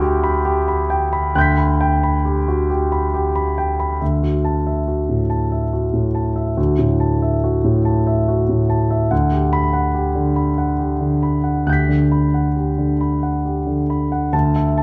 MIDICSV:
0, 0, Header, 1, 2, 480
1, 0, Start_track
1, 0, Tempo, 886263
1, 728, Time_signature, 3, 2, 24, 8
1, 2170, Tempo, 857143
1, 4090, Tempo, 842697
1, 6010, Tempo, 881057
1, 8202, End_track
2, 0, Start_track
2, 0, Title_t, "Grand piano"
2, 0, Program_c, 0, 0
2, 0, Control_c, 0, 64, 127
2, 0, Note_on_c, 0, 38, 74
2, 0, Note_on_c, 0, 66, 55
2, 0, Note_on_c, 0, 67, 63
2, 0, Note_on_c, 0, 79, 72
2, 0, Note_on_c, 0, 83, 58
2, 11, Note_off_c, 0, 67, 0
2, 11, Note_on_c, 0, 67, 61
2, 128, Note_off_c, 0, 83, 0
2, 128, Note_on_c, 0, 83, 57
2, 198, Note_off_c, 0, 67, 0
2, 244, Note_on_c, 0, 67, 59
2, 317, Note_off_c, 0, 83, 0
2, 369, Note_on_c, 0, 83, 54
2, 436, Note_off_c, 0, 67, 0
2, 488, Note_off_c, 0, 79, 0
2, 488, Note_on_c, 0, 79, 58
2, 560, Note_off_c, 0, 83, 0
2, 610, Note_on_c, 0, 83, 55
2, 681, Note_off_c, 0, 79, 0
2, 704, Note_off_c, 0, 38, 0
2, 733, Note_on_c, 0, 38, 59
2, 733, Note_on_c, 0, 90, 42
2, 734, Note_on_c, 0, 79, 62
2, 740, Control_c, 0, 64, 0
2, 743, Note_off_c, 0, 66, 0
2, 749, Note_on_c, 0, 91, 42
2, 765, Note_on_c, 0, 95, 41
2, 804, Note_off_c, 0, 83, 0
2, 830, Control_c, 0, 64, 127
2, 855, Note_on_c, 0, 83, 58
2, 926, Note_off_c, 0, 79, 0
2, 979, Note_on_c, 0, 79, 62
2, 1048, Note_off_c, 0, 83, 0
2, 1102, Note_on_c, 0, 83, 54
2, 1170, Note_off_c, 0, 79, 0
2, 1220, Note_on_c, 0, 67, 53
2, 1292, Note_off_c, 0, 83, 0
2, 1343, Note_on_c, 0, 66, 46
2, 1411, Note_off_c, 0, 67, 0
2, 1460, Note_off_c, 0, 66, 0
2, 1460, Note_on_c, 0, 67, 53
2, 1582, Note_on_c, 0, 83, 50
2, 1650, Note_off_c, 0, 67, 0
2, 1701, Note_on_c, 0, 67, 53
2, 1769, Note_off_c, 0, 83, 0
2, 1817, Note_on_c, 0, 83, 52
2, 1888, Note_off_c, 0, 67, 0
2, 1939, Note_on_c, 0, 79, 52
2, 2006, Note_off_c, 0, 83, 0
2, 2056, Note_on_c, 0, 83, 55
2, 2126, Note_off_c, 0, 79, 0
2, 2151, Note_off_c, 0, 38, 0
2, 2151, Note_off_c, 0, 90, 0
2, 2159, Note_off_c, 0, 91, 0
2, 2167, Note_off_c, 0, 95, 0
2, 2172, Note_off_c, 0, 83, 0
2, 2174, Note_on_c, 0, 76, 29
2, 2175, Note_on_c, 0, 38, 36
2, 2181, Control_c, 0, 64, 0
2, 2289, Control_c, 0, 64, 127
2, 2292, Note_on_c, 0, 66, 31
2, 2366, Note_off_c, 0, 76, 0
2, 2416, Note_on_c, 0, 81, 43
2, 2485, Note_off_c, 0, 66, 0
2, 2539, Note_on_c, 0, 76, 31
2, 2607, Note_off_c, 0, 81, 0
2, 2654, Note_on_c, 0, 66, 32
2, 2728, Note_off_c, 0, 76, 0
2, 2777, Note_on_c, 0, 45, 28
2, 2845, Note_off_c, 0, 66, 0
2, 2893, Note_on_c, 0, 81, 33
2, 2966, Note_off_c, 0, 45, 0
2, 3017, Note_on_c, 0, 76, 28
2, 3084, Note_off_c, 0, 81, 0
2, 3134, Note_on_c, 0, 66, 33
2, 3206, Note_off_c, 0, 76, 0
2, 3250, Note_on_c, 0, 45, 32
2, 3324, Note_off_c, 0, 66, 0
2, 3368, Note_on_c, 0, 81, 34
2, 3442, Note_off_c, 0, 45, 0
2, 3486, Note_on_c, 0, 76, 36
2, 3562, Note_off_c, 0, 81, 0
2, 3591, Note_off_c, 0, 38, 0
2, 3606, Note_on_c, 0, 38, 43
2, 3606, Note_on_c, 0, 66, 38
2, 3620, Control_c, 0, 64, 0
2, 3681, Note_off_c, 0, 76, 0
2, 3701, Control_c, 0, 64, 127
2, 3727, Note_on_c, 0, 45, 36
2, 3801, Note_off_c, 0, 66, 0
2, 3846, Note_on_c, 0, 81, 40
2, 3921, Note_off_c, 0, 45, 0
2, 3971, Note_on_c, 0, 76, 37
2, 4041, Note_off_c, 0, 81, 0
2, 4091, Note_on_c, 0, 66, 42
2, 4163, Note_off_c, 0, 76, 0
2, 4208, Note_on_c, 0, 45, 38
2, 4284, Note_off_c, 0, 66, 0
2, 4327, Note_on_c, 0, 81, 44
2, 4403, Note_off_c, 0, 45, 0
2, 4451, Note_on_c, 0, 76, 40
2, 4522, Note_off_c, 0, 81, 0
2, 4572, Note_on_c, 0, 66, 46
2, 4643, Note_off_c, 0, 76, 0
2, 4692, Note_on_c, 0, 45, 38
2, 4763, Note_off_c, 0, 66, 0
2, 4808, Note_on_c, 0, 81, 43
2, 4881, Note_off_c, 0, 45, 0
2, 4927, Note_on_c, 0, 76, 43
2, 4998, Note_off_c, 0, 81, 0
2, 5021, Note_off_c, 0, 38, 0
2, 5043, Note_on_c, 0, 78, 46
2, 5045, Note_off_c, 0, 76, 0
2, 5046, Note_on_c, 0, 38, 53
2, 5056, Control_c, 0, 64, 0
2, 5139, Control_c, 0, 64, 127
2, 5159, Note_on_c, 0, 67, 41
2, 5233, Note_off_c, 0, 78, 0
2, 5282, Note_on_c, 0, 83, 64
2, 5351, Note_off_c, 0, 67, 0
2, 5400, Note_on_c, 0, 78, 41
2, 5472, Note_off_c, 0, 83, 0
2, 5519, Note_on_c, 0, 67, 41
2, 5592, Note_off_c, 0, 78, 0
2, 5637, Note_on_c, 0, 50, 39
2, 5714, Note_off_c, 0, 67, 0
2, 5756, Note_on_c, 0, 83, 42
2, 5835, Note_off_c, 0, 50, 0
2, 5881, Note_on_c, 0, 78, 36
2, 5957, Note_off_c, 0, 83, 0
2, 6001, Note_on_c, 0, 67, 38
2, 6078, Note_off_c, 0, 78, 0
2, 6119, Note_on_c, 0, 50, 34
2, 6196, Note_off_c, 0, 67, 0
2, 6240, Note_on_c, 0, 83, 36
2, 6314, Note_off_c, 0, 50, 0
2, 6354, Note_on_c, 0, 78, 33
2, 6435, Note_off_c, 0, 83, 0
2, 6466, Note_off_c, 0, 38, 0
2, 6478, Note_on_c, 0, 38, 38
2, 6478, Note_on_c, 0, 67, 34
2, 6480, Note_on_c, 0, 90, 27
2, 6494, Note_on_c, 0, 91, 26
2, 6498, Control_c, 0, 64, 0
2, 6512, Note_on_c, 0, 95, 27
2, 6554, Note_off_c, 0, 78, 0
2, 6598, Note_on_c, 0, 50, 32
2, 6599, Control_c, 0, 64, 127
2, 6677, Note_off_c, 0, 67, 0
2, 6724, Note_on_c, 0, 83, 38
2, 6797, Note_off_c, 0, 50, 0
2, 6847, Note_on_c, 0, 78, 33
2, 6920, Note_off_c, 0, 83, 0
2, 6967, Note_on_c, 0, 67, 35
2, 7041, Note_off_c, 0, 78, 0
2, 7087, Note_on_c, 0, 50, 32
2, 7160, Note_off_c, 0, 67, 0
2, 7209, Note_on_c, 0, 83, 34
2, 7280, Note_off_c, 0, 50, 0
2, 7330, Note_on_c, 0, 78, 31
2, 7402, Note_off_c, 0, 83, 0
2, 7451, Note_on_c, 0, 67, 34
2, 7522, Note_off_c, 0, 78, 0
2, 7568, Note_on_c, 0, 50, 33
2, 7643, Note_off_c, 0, 67, 0
2, 7695, Note_on_c, 0, 83, 34
2, 7762, Note_off_c, 0, 50, 0
2, 7815, Note_on_c, 0, 78, 35
2, 7885, Note_off_c, 0, 83, 0
2, 7904, Note_off_c, 0, 38, 0
2, 7905, Note_off_c, 0, 90, 0
2, 7912, Note_off_c, 0, 91, 0
2, 7921, Note_off_c, 0, 95, 0
2, 7928, Note_on_c, 0, 38, 50
2, 7930, Note_on_c, 0, 81, 59
2, 7933, Note_off_c, 0, 78, 0
2, 7941, Control_c, 0, 64, 0
2, 8035, Control_c, 0, 64, 127
2, 8054, Note_on_c, 0, 76, 43
2, 8121, Note_off_c, 0, 81, 0
2, 8173, Note_on_c, 0, 81, 52
2, 8202, Note_off_c, 0, 38, 0
2, 8202, Note_off_c, 0, 76, 0
2, 8202, Note_off_c, 0, 81, 0
2, 8202, End_track
0, 0, End_of_file